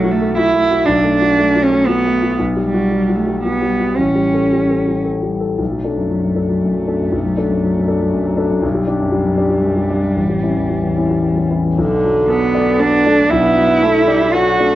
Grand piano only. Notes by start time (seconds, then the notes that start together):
Already playing: B1 A3 F#4
0.04 F#4
0.21 A3
0.37 F#4
0.54 A3
0.71 F#4
0.87 B1
1.04 A3
1.21 F#4
1.38 A3
1.55 F#4
1.72 A3
1.88 F#4
2.05 A3
2.23 F#4
2.39 B1
2.57 G3
2.74 F#4
2.92 G3
3.09 F#4
3.27 G3
3.45 F#4
3.62 G3
3.79 F#4
3.98 A1
4.15 G3
4.34 A4
4.53 G3
4.70 A4
4.88 G3
5.05 A4
5.23 G3
5.40 A4
5.58 B1
5.71 F#3
5.84 D4 A4
5.97 F#2
6.10 F#3
6.22 F#2
6.35 D4 A4
6.48 F#3
6.62 F#2
6.74 F#3
6.87 D4 A4
6.99 F#2
7.12 B1
7.24 F#3
7.37 D4 A4
7.49 F#2
7.63 F#3
7.76 F#2
7.88 D4 A4
8.00 F#3
8.13 F#2
8.25 F#3
8.37 D4 A4
8.49 F#2
8.62 B1
8.74 G3
8.87 D4 G4
8.99 F#2
9.12 G3
9.24 F#2
9.37 D4 G4
9.49 G3
9.63 F#2
9.76 G3
9.90 D4 G4
10.03 F#2
10.17 A1
10.30 G3
10.43 C#4 E4
10.56 E2
10.69 G3
10.83 E2
10.97 C#4 E4
11.10 G3
11.23 E2
11.37 G3
11.50 C#4 E4
11.65 E2
11.78 B1
12.04 F#3
12.30 A4
12.55 D5
12.81 A4
13.06 D4
13.32 B1
13.57 F#3
13.83 A4
14.08 D5
14.35 A4
14.60 D4